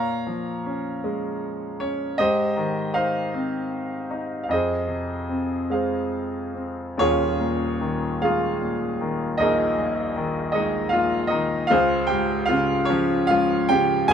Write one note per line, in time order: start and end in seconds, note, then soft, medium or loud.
0.00 2.15 A#2 soft
0.00 1.78 C#5 medium
0.00 1.78 F5 medium
0.00 1.87 A#5 medium
0.27 1.77 F3 soft
0.66 1.80 C#4 soft
1.04 2.15 G#3 medium
1.80 2.18 C#4 medium
1.80 2.20 C#5 medium
2.18 4.46 G#2 medium
2.18 3.30 G4 medium
2.18 2.93 C5 medium
2.18 2.97 D#5 medium
2.56 4.07 D#3 soft
2.94 4.09 D#4 medium
2.94 4.40 C5 medium
2.94 4.42 F5 medium
3.34 4.47 C4 soft
4.11 4.49 D#4 soft
4.44 4.50 F5 soft
4.49 6.94 F2 medium
4.49 5.68 D#5 medium
4.53 5.69 G#4 medium
4.53 5.69 C5 soft
4.87 6.52 C3 soft
5.29 6.53 C4 soft
5.70 6.95 G#3 soft
5.70 6.96 G#4 soft
5.70 6.96 C5 soft
5.70 6.63 F5 medium
6.54 6.97 C4 soft
6.98 9.35 D#1 soft
6.98 9.35 D#2 medium
6.98 7.79 C#4 medium
6.98 7.79 F4 medium
6.98 7.79 G#4 medium
6.98 7.78 C#5 medium
7.40 8.60 A#2 soft
7.81 8.99 D#3 soft
8.22 9.74 G#3 soft
8.22 9.37 F4 soft
8.22 9.37 G#4 medium
8.22 9.43 F5 medium
8.61 9.76 A#2 soft
9.01 10.15 D#3 soft
9.38 11.67 A#1 medium
9.38 10.51 D#4 medium
9.38 10.51 G#4 medium
9.38 10.51 A#4 medium
9.38 10.50 D#5 medium
9.78 10.91 A#2 soft
10.16 11.30 D#3 medium
10.52 11.67 G#3 medium
10.52 10.91 D#4 medium
10.52 10.93 D#5 medium
10.89 11.68 A#2 soft
10.89 11.29 F4 medium
10.89 11.31 F5 medium
11.27 11.67 D#4 medium
11.27 11.70 D#5 medium
11.32 11.70 D#3 medium
11.67 14.06 C#2 medium
11.67 12.07 F4 medium
11.67 12.07 G#4 medium
11.67 12.08 C5 medium
11.67 12.10 F5 medium
12.07 12.47 G4 medium
12.07 12.49 G5 medium
12.12 13.28 G#2 soft
12.46 12.86 F4 medium
12.46 12.89 F5 medium
12.50 13.68 C#3 medium
12.85 13.24 C#5 medium
12.89 14.13 F3 medium
12.89 13.27 C#4 medium
13.27 14.13 G#2 soft
13.27 13.67 F4 medium
13.27 13.69 F5 medium
13.69 14.13 C#3 medium
13.69 14.08 G4 medium
13.69 14.10 G5 loud
14.08 14.13 G#1 medium
14.08 14.13 G#5 loud